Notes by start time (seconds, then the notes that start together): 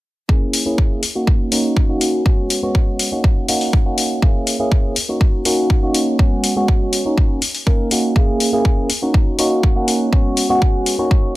0.29 A#3 C#4 E4 G#4, kick
0.53 open hi-hat
0.66 A#3 C#4 E4 G#4
0.78 kick
1.03 open hi-hat
1.15 A#3 C#4 D#4 F#4
1.27 kick
1.51 A#3 C#4 D#4 F#4, open hi-hat
1.77 kick
1.89 A#3 C#4 D#4 F#4
2.01 open hi-hat
2.25 G#3 C#4, kick
2.50 open hi-hat
2.62 G#3 B3 C#4 F#4
2.75 kick
2.99 open hi-hat
3.12 A#3 C#4 D#4 F#4
3.24 kick
3.48 A#3 C#4 D#4 F#4, open hi-hat
3.61 open hi-hat
3.73 kick
3.85 A#3 C#4 D#4 F#4
3.98 open hi-hat
4.22 A#3 E4 G#4, kick
4.47 open hi-hat
4.59 A#3 C#4 E4 G#4
4.72 kick
4.96 open hi-hat
5.09 A#3 C#4 D#4 F#4
5.21 kick
5.45 A#3 C#4 D#4 F#4, open hi-hat
5.70 kick
5.82 A#3 C#4 D#4 F#4
5.94 open hi-hat
6.19 G#3 B3 C#4 F#4, kick
6.44 open hi-hat
6.56 G#3 B3 C#4 F#4
6.68 kick
6.93 open hi-hat
7.05 A#3 C#4 D#4 F#4
7.18 kick
7.42 open hi-hat
7.55 open hi-hat
7.66 A#3 C#4 D#4 A#4, kick
7.91 A#3 C#4 D#4 F#4, open hi-hat
8.16 A#3 C#4 E4 G#4, kick
8.40 open hi-hat
8.53 A#3 C#4 E4 G#4
8.65 kick
8.90 open hi-hat
9.02 A#3 C#4 D#4 F#4
9.14 kick
9.39 A#3 C#4 D#4 F#4, open hi-hat
9.63 kick
9.76 A#3 C#4 D#4 F#4
9.88 open hi-hat
10.12 G#3 B3 C#4 F#4, kick
10.37 open hi-hat
10.49 G#3 B3 C#4 F#4
10.62 kick
10.86 open hi-hat
10.99 A#3 C#4 D#4 F#4
11.11 kick